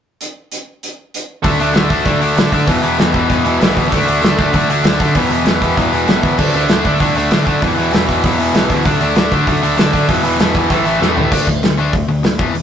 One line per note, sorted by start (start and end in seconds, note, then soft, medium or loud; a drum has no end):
0.21 closed hi-hat medium
0.52 closed hi-hat medium
0.83 closed hi-hat medium
1.14 closed hi-hat medium
1.44 1.58 D2 medium
1.44 1.60 D3 medium
1.44 1.60 A3 medium
1.44 1.59 D4 loud
1.44 kick loud
1.44 open hi-hat medium
1.59 1.73 D2 medium
1.59 1.74 D3 medium
1.59 1.75 A3 medium
1.59 1.75 D4 medium
1.59 open hi-hat medium
1.74 1.88 D2 medium
1.74 1.90 D3 medium
1.74 1.90 A3 medium
1.74 1.89 D4 medium
1.74 snare loud
1.74 open hi-hat medium
1.90 2.04 D2 medium
1.90 2.05 D3 medium
1.90 2.05 A3 medium
1.90 2.05 D4 medium
1.90 kick medium
1.90 open hi-hat medium
2.05 2.18 D2 medium
2.05 2.21 D3 medium
2.05 2.20 A3 loud
2.05 2.20 D4 loud
2.05 kick medium
2.05 open hi-hat medium
2.19 2.34 D2 medium
2.19 2.36 D3 medium
2.19 2.36 A3 medium
2.19 2.37 D4 medium
2.19 open hi-hat medium
2.36 2.50 D2 medium
2.36 2.52 D3 medium
2.36 2.52 A3 medium
2.36 2.52 D4 loud
2.36 snare loud
2.36 open hi-hat medium
2.52 2.66 D3 medium
2.52 2.67 D3 medium
2.52 2.67 A3 medium
2.52 2.67 D4 medium
2.52 kick medium
2.52 open hi-hat medium
2.67 2.81 E1 medium
2.67 2.83 E2 medium
2.67 2.83 B2 loud
2.67 2.82 E3 loud
2.67 kick loud
2.67 open hi-hat medium
2.83 2.97 E1 medium
2.83 2.97 E2 medium
2.83 2.98 B2 medium
2.83 2.99 E3 medium
2.83 open hi-hat medium
2.98 3.26 E2 medium
2.98 3.14 E2 medium
2.98 3.14 B2 medium
2.98 3.13 E3 medium
2.98 snare loud
2.98 open hi-hat medium
3.14 3.29 E2 medium
3.14 3.29 B2 medium
3.14 3.29 E3 loud
3.14 kick medium
3.14 open hi-hat medium
3.30 3.57 E1 medium
3.30 3.45 E2 medium
3.30 3.45 B2 loud
3.30 3.45 E3 loud
3.30 kick medium
3.30 open hi-hat medium
3.45 3.60 E2 medium
3.45 3.61 B2 medium
3.45 3.61 E3 loud
3.45 open hi-hat medium
3.60 3.74 B1 loud
3.60 3.77 E2 medium
3.60 3.77 B2 medium
3.60 3.77 E3 medium
3.60 snare loud
3.60 open hi-hat medium
3.77 3.90 D2 medium
3.77 3.92 E2 medium
3.77 3.92 B2 medium
3.77 3.91 E3 medium
3.77 kick medium
3.77 open hi-hat medium
3.89 4.06 D2 medium
3.89 4.04 D3 loud
3.89 4.03 A3 loud
3.89 kick loud
3.89 open hi-hat medium
3.93 4.08 D3 medium
3.93 4.07 A3 medium
3.93 4.07 D4 loud
4.04 4.21 D2 medium
4.04 4.20 D3 medium
4.04 4.21 A3 medium
4.04 4.21 D4 loud
4.04 open hi-hat medium
4.08 4.23 D3 medium
4.08 4.24 A3 medium
4.08 4.24 D4 medium
4.22 4.36 D2 medium
4.22 4.39 D3 medium
4.22 4.39 A3 medium
4.22 4.38 D4 medium
4.22 snare loud
4.22 open hi-hat medium
4.38 4.52 D2 medium
4.38 4.54 D3 medium
4.38 4.54 A3 medium
4.38 4.55 D4 medium
4.38 kick medium
4.38 open hi-hat medium
4.53 4.67 D2 medium
4.53 4.70 D3 medium
4.53 4.70 A3 loud
4.53 4.69 D4 loud
4.53 kick medium
4.53 open hi-hat medium
4.69 4.82 D2 medium
4.69 4.84 D3 medium
4.69 4.84 A3 medium
4.69 4.85 D4 medium
4.69 open hi-hat medium
4.84 4.98 D2 medium
4.84 5.00 D3 medium
4.84 5.00 A3 medium
4.84 4.99 D4 medium
4.84 snare loud
4.84 open hi-hat medium
5.00 5.13 D3 medium
5.00 5.15 D3 medium
5.00 5.15 A3 loud
5.00 5.14 D4 medium
5.00 kick medium
5.00 open hi-hat medium
5.15 5.29 E1 medium
5.15 5.31 E2 loud
5.15 5.30 B2 medium
5.15 5.30 E3 loud
5.15 kick medium
5.15 open hi-hat medium
5.31 5.44 E1 medium
5.31 5.45 E2 medium
5.31 5.45 B2 medium
5.31 5.46 E3 medium
5.31 open hi-hat medium
5.45 5.73 E2 medium
5.45 5.62 E2 medium
5.45 5.61 B2 medium
5.45 5.61 E3 medium
5.45 snare loud
5.45 open hi-hat medium
5.62 5.75 E2 medium
5.62 5.75 B2 medium
5.62 5.76 E3 medium
5.62 kick medium
5.62 open hi-hat medium
5.77 6.04 E1 medium
5.77 5.92 E2 medium
5.77 5.92 B2 loud
5.77 5.92 E3 loud
5.77 kick medium
5.77 open hi-hat medium
5.93 6.07 E2 medium
5.93 6.08 B2 medium
5.93 6.08 E3 loud
5.93 open hi-hat medium
6.07 6.21 B1 medium
6.07 6.23 E2 medium
6.07 6.23 B2 medium
6.07 6.22 E3 medium
6.07 snare loud
6.07 open hi-hat medium
6.23 6.37 D2 medium
6.23 6.38 E2 medium
6.23 6.38 B2 medium
6.23 6.38 E3 loud
6.23 kick medium
6.23 open hi-hat medium
6.38 6.52 D2 medium
6.38 6.54 D3 medium
6.38 6.54 A3 medium
6.38 6.53 D4 loud
6.38 kick medium
6.38 crash loud
6.53 6.67 D2 medium
6.53 6.69 D3 medium
6.53 6.69 A3 medium
6.53 6.70 D4 medium
6.53 open hi-hat medium
6.68 6.82 D2 medium
6.68 6.85 D3 medium
6.68 6.84 A3 medium
6.68 6.84 D4 medium
6.68 snare loud
6.68 open hi-hat medium
6.84 6.98 D2 medium
6.84 6.99 D3 medium
6.84 7.00 A3 medium
6.84 7.00 D4 loud
6.84 kick medium
6.84 open hi-hat medium
7.00 7.13 D2 medium
7.00 7.15 D3 medium
7.00 7.16 A3 loud
7.00 7.15 D4 loud
7.00 kick medium
7.00 open hi-hat medium
7.14 7.28 D2 medium
7.14 7.31 D3 medium
7.14 7.31 A3 medium
7.14 7.31 D4 medium
7.14 open hi-hat medium
7.31 7.45 D2 medium
7.31 7.46 D3 medium
7.31 7.46 A3 medium
7.31 7.46 D4 loud
7.31 snare loud
7.31 open hi-hat medium
7.47 7.60 D3 medium
7.47 7.61 D3 medium
7.47 7.61 A3 medium
7.47 7.61 D4 medium
7.47 kick medium
7.47 open hi-hat medium
7.61 7.75 E1 medium
7.61 7.77 E2 medium
7.61 7.76 B2 loud
7.61 7.77 E3 loud
7.61 kick loud
7.61 open hi-hat medium
7.76 7.90 E1 medium
7.76 7.91 E2 medium
7.76 7.91 B2 medium
7.76 7.91 E3 medium
7.76 open hi-hat medium
7.92 8.19 E2 medium
7.92 8.07 E2 medium
7.92 8.06 B2 loud
7.92 8.06 E3 medium
7.92 snare loud
7.92 open hi-hat medium
8.07 8.22 E2 medium
8.07 8.22 B2 medium
8.07 8.23 E3 loud
8.07 kick medium
8.07 open hi-hat medium
8.23 8.51 E1 medium
8.23 8.38 E2 medium
8.23 8.37 B2 medium
8.23 8.37 E3 loud
8.23 kick medium
8.23 open hi-hat medium
8.38 8.53 E2 medium
8.38 8.53 B2 medium
8.38 8.54 E3 medium
8.38 open hi-hat medium
8.54 8.68 B1 medium
8.54 8.69 E2 medium
8.54 8.69 B2 medium
8.54 8.68 E3 loud
8.54 snare loud
8.54 open hi-hat medium
8.69 8.84 D2 loud
8.69 8.84 E2 medium
8.69 8.84 B2 medium
8.69 8.84 E3 medium
8.69 kick medium
8.69 open hi-hat medium
8.85 8.99 D2 medium
8.85 9.00 D3 medium
8.85 9.00 A3 medium
8.85 9.00 D4 loud
8.85 kick loud
8.85 open hi-hat medium
9.00 9.14 D2 medium
9.00 9.14 D3 medium
9.00 9.15 A3 medium
9.00 9.16 D4 medium
9.00 open hi-hat medium
9.16 9.30 D2 medium
9.16 9.31 D3 medium
9.16 9.31 A3 medium
9.16 9.31 D4 medium
9.16 snare loud
9.16 open hi-hat medium
9.31 9.45 D2 medium
9.31 9.46 D3 medium
9.31 9.46 A3 medium
9.31 9.47 D4 medium
9.31 kick medium
9.31 open hi-hat medium
9.47 9.60 D2 loud
9.47 9.62 D3 loud
9.47 9.61 A3 loud
9.47 9.61 D4 loud
9.47 kick medium
9.47 open hi-hat medium
9.62 9.76 D2 medium
9.62 9.76 D3 medium
9.62 9.76 A3 medium
9.62 9.77 D4 medium
9.62 open hi-hat medium
9.77 9.91 D2 medium
9.77 9.93 D3 medium
9.77 9.92 A3 medium
9.77 9.92 D4 loud
9.77 snare loud
9.77 open hi-hat medium
9.93 10.07 D3 medium
9.93 10.08 D3 medium
9.93 10.08 A3 medium
9.93 10.07 D4 medium
9.93 kick medium
9.93 open hi-hat medium
10.08 10.22 E1 medium
10.08 10.24 E2 medium
10.08 10.23 B2 medium
10.08 10.23 E3 loud
10.08 kick loud
10.08 open hi-hat medium
10.23 10.37 E1 medium
10.23 10.38 E2 medium
10.23 10.38 B2 medium
10.23 10.39 E3 medium
10.23 open hi-hat medium
10.39 10.54 E2 medium
10.39 10.67 E2 medium
10.39 10.54 B2 medium
10.39 10.54 E3 medium
10.39 snare loud
10.39 open hi-hat medium
10.54 10.69 E2 medium
10.54 10.69 B2 medium
10.54 10.69 E3 medium
10.54 kick medium
10.54 open hi-hat medium
10.70 10.97 A1 medium
10.70 10.86 A2 loud
10.70 10.85 E3 loud
10.70 10.85 A3 loud
10.70 kick medium
10.70 open hi-hat medium
10.85 11.00 A2 medium
10.85 11.00 E3 medium
10.85 11.01 A3 medium
10.85 open hi-hat medium
11.01 11.15 E2 medium
11.01 11.16 A2 medium
11.01 11.16 E3 medium
11.01 11.16 A3 medium
11.01 snare medium
11.17 11.30 G2 medium
11.17 11.31 A2 medium
11.17 11.31 E3 medium
11.17 11.31 A3 medium
11.17 floor tom medium
11.31 11.46 D2 medium
11.31 11.46 D3 medium
11.31 11.46 A3 medium
11.31 11.46 D4 loud
11.31 kick loud
11.31 crash loud
11.47 11.61 D2 medium
11.47 11.61 D3 medium
11.47 11.61 A3 medium
11.47 kick medium
11.62 11.91 D2 medium
11.62 11.77 D3 medium
11.62 11.77 A3 medium
11.62 snare loud
11.62 open hi-hat soft
11.78 11.92 D3 medium
11.78 11.92 A3 medium
11.78 11.93 D4 medium
11.93 12.07 D2 medium
11.93 12.07 D3 medium
11.93 12.07 A3 medium
11.93 kick loud
11.93 open hi-hat soft
12.08 12.22 D2 medium
12.08 12.22 D3 medium
12.08 12.22 A3 medium
12.23 12.37 D2 medium
12.23 12.38 D3 medium
12.23 12.38 A3 medium
12.23 snare loud
12.23 open hi-hat medium
12.38 12.53 E1 medium
12.38 12.53 E2 medium
12.38 12.53 B2 loud
12.38 12.54 E3 loud
12.38 kick loud
12.54 12.62 E1 medium
12.54 12.62 E2 medium
12.54 12.62 B2 medium
12.54 open hi-hat medium